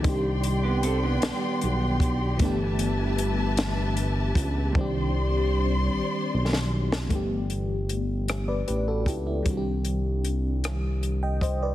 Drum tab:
HH |x-x-x-x-x-x-|x-x-x-x-x-x-|------------|x-x-x-x-x-x-|
SD |------o-----|------o-----|---------o-o|------r-----|
BD |o---------o-|o---------o-|o-----------|o---------o-|

HH |x-x-x-x-x-x-|
SD |------r-----|
BD |o---------o-|